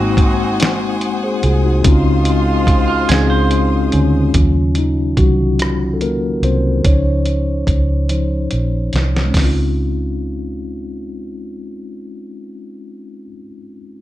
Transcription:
0.00 1.02 G#1 loud
0.00 0.24 G#3 medium
0.00 0.24 A#3 medium
0.00 0.25 C4 medium
0.00 1.39 C4 medium
0.00 0.26 D#4 medium
0.00 1.39 D#4 medium
0.00 0.26 F#4 loud
0.00 1.39 F#4 medium
0.00 1.82 C5 medium
0.00 1.82 F#5 medium
0.00 1.82 G#5 medium
0.00 4.31 D#6 medium
0.17 kick medium
0.17 closed hi-hat soft
0.60 snare loud
0.60 closed hi-hat medium
1.01 1.39 F#1 medium
1.01 closed hi-hat medium
1.24 1.43 G#4 medium
1.24 1.43 C5 medium
1.43 1.81 C2 loud
1.43 1.64 F4 medium
1.43 1.63 G#4 medium
1.43 closed hi-hat soft
1.65 1.86 D#4 medium
1.65 2.04 F#4 medium
1.84 3.06 C#2 loud
1.84 2.74 G#3 loud
1.84 3.89 G#3 medium
1.84 3.89 C4 medium
1.84 2.75 C4 medium
1.84 2.75 C#4 medium
1.84 2.76 D#4 medium
1.84 3.89 F4 medium
1.84 4.33 C5 medium
1.84 4.33 F5 medium
1.84 4.33 C6 medium
1.84 kick loud
1.84 closed hi-hat medium
1.88 2.76 F4 loud
2.25 closed hi-hat medium
2.67 kick medium
2.67 closed hi-hat soft
2.88 3.08 F4 medium
3.09 3.89 C#2 loud
3.09 3.99 G#3 medium
3.09 4.00 C4 medium
3.09 3.92 C#4 medium
3.09 4.01 D#4 medium
3.09 3.29 G#4 medium
3.09 snare loud
3.09 closed hi-hat medium
3.13 4.02 G#4 loud
3.30 4.30 C5 medium
3.51 closed hi-hat medium
3.92 4.31 D2 medium
3.92 4.73 C#3 medium
3.92 4.34 C#4 medium
3.92 closed hi-hat soft
4.34 5.14 D#2 medium
4.34 5.19 F#3 soft
4.34 5.59 C#4 soft
4.34 5.60 F4 medium
4.34 kick loud
4.34 closed hi-hat medium
4.75 5.16 D#3 medium
4.75 5.20 D#4 medium
4.75 closed hi-hat soft
5.17 6.39 C2 medium
5.17 5.59 F#3 medium
5.17 5.97 F#4 medium
5.17 kick medium
5.17 closed hi-hat soft
5.59 5.97 F#3 soft
5.59 5.97 C#4 soft
5.59 5.98 F4 soft
5.59 cross-stick loud
5.59 closed hi-hat medium
5.94 6.01 A4 medium
6.01 6.41 A#3 medium
6.01 6.44 A#4 medium
6.01 closed hi-hat soft
6.42 6.80 C2 medium
6.42 6.82 C4 medium
6.42 6.82 C5 medium
6.42 closed hi-hat soft
6.85 7.64 C#2 medium
6.85 7.41 F3 soft
6.85 8.90 C#4 medium
6.85 7.41 D#4 soft
6.85 7.41 C5 soft
6.85 8.90 C#5 medium
6.85 kick loud
6.85 closed hi-hat medium
7.26 closed hi-hat soft
7.67 8.47 C#2 medium
7.67 kick medium
7.67 closed hi-hat soft
8.09 8.48 F3 soft
8.09 8.48 D#4 soft
8.09 8.48 C5 soft
8.09 closed hi-hat medium
8.51 8.89 A#1 medium
8.51 closed hi-hat soft
8.93 9.31 C2 medium
8.93 snare medium
8.93 closed hi-hat soft
9.17 snare medium
9.25 13.26 G#3 medium
9.30 13.28 C4 medium
9.34 13.31 C#2 medium
9.34 13.31 C#4 medium
9.34 kick medium
9.34 snare medium
9.34 open hi-hat medium
9.40 13.33 D#4 medium
9.44 13.35 F4 medium

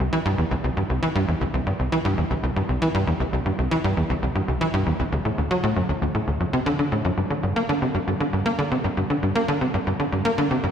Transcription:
0.13 0.19 E3 loud
0.26 0.35 G2 loud
0.38 0.45 E2 medium
0.51 0.55 C2 medium
0.64 0.71 C2 medium
0.77 0.83 G2 medium
0.90 1.00 C2 medium
1.03 1.09 E3 loud
1.15 1.25 G2 loud
1.28 1.35 E2 medium
1.41 1.45 C2 medium
1.54 1.60 C2 medium
1.67 1.73 G2 medium
1.79 1.89 C2 medium
1.92 1.99 E3 loud
2.05 2.15 G2 loud
2.18 2.24 E2 medium
2.31 2.35 C2 medium
2.43 2.50 C2 medium
2.56 2.63 G2 medium
2.69 2.79 C2 medium
2.82 2.88 E3 loud
2.95 3.04 G2 loud
3.07 3.14 E2 medium
3.20 3.24 C2 medium
3.33 3.40 C2 medium
3.46 3.52 G2 medium
3.59 3.69 C2 medium
3.71 3.78 E3 loud
3.84 3.94 G2 loud
3.97 4.04 E2 medium
4.10 4.14 C2 medium
4.23 4.29 C2 medium
4.35 4.42 G2 medium
4.48 4.58 C2 medium
4.61 4.68 E3 loud
4.74 4.84 G2 loud
4.87 4.93 E2 medium
5.00 5.04 C2 medium
5.12 5.19 D2 medium
5.25 5.32 A2 medium
5.38 5.48 D2 medium
5.51 5.58 F#3 loud
5.64 5.74 A2 loud
5.76 5.83 F#2 medium
5.89 5.93 D2 medium
6.02 6.09 D2 medium
6.15 6.21 A2 medium
6.28 6.38 D2 medium
6.40 6.45 F#2 medium
6.53 6.60 C3 loud
6.66 6.73 D3 loud
6.79 6.86 D3 medium
6.92 7.02 A2 medium
7.05 7.11 F#2 medium
7.17 7.24 G2 medium
7.30 7.37 D3 medium
7.43 7.53 G2 medium
7.56 7.63 A#3 medium
7.69 7.79 D3 loud
7.82 7.89 C3 medium
7.95 7.99 G2 medium
8.08 8.14 G2 medium
8.20 8.27 D3 medium
8.33 8.43 G2 medium
8.46 8.52 A#3 medium
8.59 8.69 D3 medium
8.72 8.78 C3 medium
8.84 8.88 G2 medium
8.97 9.04 G2 medium
9.10 9.17 D3 medium
9.23 9.33 G2 medium
9.36 9.42 A#3 medium
9.48 9.58 D3 loud
9.61 9.68 C3 medium
9.74 9.78 G2 medium
9.87 9.94 G2 medium
10.00 10.06 D3 medium
10.12 10.22 G2 medium
10.25 10.32 A#3 medium
10.38 10.48 D3 loud
10.51 10.58 C3 medium
10.64 10.68 G2 medium

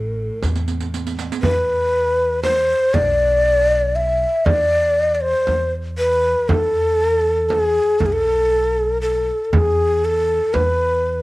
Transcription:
0.00 0.28 A1 medium
0.00 1.54 A2 medium
0.00 0.41 A4 medium
0.43 1.29 E2 medium
0.43 riq medium
0.43 frame drum medium
0.56 riq medium
0.68 riq medium
0.80 riq medium
0.94 riq medium
1.07 riq medium
1.19 riq medium
1.32 riq medium
1.42 2.72 E2 medium
1.42 2.40 B4 loud
1.42 frame drum medium
2.43 2.96 C5 medium
2.43 frame drum medium
2.94 4.24 B1 medium
2.94 3.97 D5 loud
2.94 frame drum medium
3.96 4.47 E5 medium
4.45 5.32 E2 medium
4.45 5.15 D5 loud
4.45 frame drum medium
5.15 5.23 D5 medium
5.21 5.71 C5 medium
5.47 6.33 E2 medium
5.47 frame drum medium
5.98 6.50 B4 medium
6.49 7.78 E2 loud
6.49 7.49 A4 loud
6.49 frame drum medium
7.49 7.61 A4 medium
7.49 frame drum medium
7.61 8.01 G#4 medium
8.00 9.29 B1 medium
8.00 8.07 A4 medium
8.00 frame drum medium
8.06 8.14 G#4 medium
8.13 9.01 A4 loud
9.02 9.45 A4 medium
9.45 9.55 A4 medium
9.53 10.39 E2 medium
9.53 10.06 G#4 medium
9.53 frame drum medium
10.05 10.55 A4 medium
10.54 11.22 E2 medium
10.54 11.22 B4 medium
10.54 frame drum medium

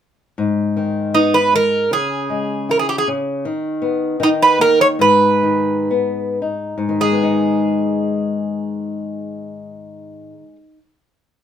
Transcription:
0.38 1.88 G#2 medium
0.77 1.14 D#3 soft
1.14 1.52 B3 soft
1.14 1.35 D#4 medium
1.34 1.54 B4 medium
1.53 1.90 G#3 soft
1.53 1.90 A#4 medium
1.91 3.06 C#3 medium
1.91 2.68 G#4 medium
2.30 2.67 G#3 soft
2.69 3.06 E4 soft
2.69 2.79 A#4 medium
2.79 2.89 G#4 medium
2.89 2.98 G4 medium
2.98 3.07 G#4 medium
3.08 3.44 C#3 medium
3.45 4.18 D#3 medium
3.82 4.19 B3 soft
4.20 4.97 D#3 medium
4.20 4.28 D#4 medium
4.42 4.59 B4 medium
4.59 4.98 A#3 soft
4.59 4.79 A#4 medium
4.81 4.86 C#5 medium
4.99 6.76 G#2 medium
4.99 6.39 B4 medium
5.43 5.89 D#3 soft
5.91 6.41 B3 soft
6.42 6.98 D#4 soft
6.78 10.32 G#2 soft
6.89 10.43 D#3 soft
7.00 10.55 G#3 soft
7.00 10.56 G#4 medium
7.12 10.66 B3 soft
7.23 10.77 D#4 medium

